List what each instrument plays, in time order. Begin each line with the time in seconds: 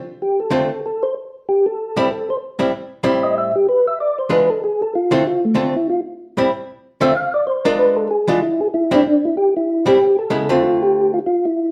0.22 tonewheel organ G4
0.40 tonewheel organ A4
0.51 hollow-body jazz guitar D3 A3 C4 F4
0.86 tonewheel organ A4
1.03 tonewheel organ C5
1.49 tonewheel organ G4
1.66 tonewheel organ A4
1.97 hollow-body jazz guitar A2 G3 C4 E4
2.11 tonewheel organ A4
2.30 tonewheel organ C5
2.59 hollow-body jazz guitar A2 G3 C4 E4
3.03 hollow-body jazz guitar A2 G3 C4 E4
3.23 tonewheel organ D#5
3.38 tonewheel organ E5
3.55 tonewheel organ G4
3.69 tonewheel organ B4
3.87 tonewheel organ E5
4.00 tonewheel organ D5
4.18 tonewheel organ C5
4.29 hollow-body jazz guitar E3 G#3 D4 F4, tonewheel organ B4
4.50 tonewheel organ A4
4.64 tonewheel organ G#4
4.82 tonewheel organ A4
4.95 tonewheel organ F4
5.11 hollow-body jazz guitar D3 A3 C4 F4, tonewheel organ E4
5.27 tonewheel organ F4
5.45 tonewheel organ A3
5.55 hollow-body jazz guitar D3 A3 C4 F4, tonewheel organ C4
5.76 tonewheel organ E4
5.90 tonewheel organ F4
6.37 hollow-body jazz guitar A2 G3 C4 E4
7.01 hollow-body jazz guitar D3 A3 C4 F4, tonewheel organ E5
7.15 tonewheel organ F5
7.34 tonewheel organ D5
7.47 tonewheel organ C5
7.65 hollow-body jazz guitar G#3 D4 F4, tonewheel organ A#4
7.79 tonewheel organ B4
7.97 tonewheel organ A4
8.11 tonewheel organ G#4
8.28 hollow-body jazz guitar E3 G#3 D4 F4, tonewheel organ F4
8.42 tonewheel organ E4
8.61 tonewheel organ G#4
8.74 tonewheel organ E4
8.91 hollow-body jazz guitar A2 G3 C4 E4, tonewheel organ D4
9.07 tonewheel organ D4
9.25 tonewheel organ E4
9.37 tonewheel organ G4
9.57 tonewheel organ E4
9.86 hollow-body jazz guitar A2 G3 C4 E4, tonewheel organ G4
10.19 tonewheel organ A4
10.30 hollow-body jazz guitar C#3 G#3 B3 E4
10.49 hollow-body jazz guitar D3 A3 C4 F4, tonewheel organ F4
10.64 tonewheel organ F4
10.83 tonewheel organ G4
11.14 tonewheel organ F4
11.26 tonewheel organ F4
11.45 tonewheel organ E4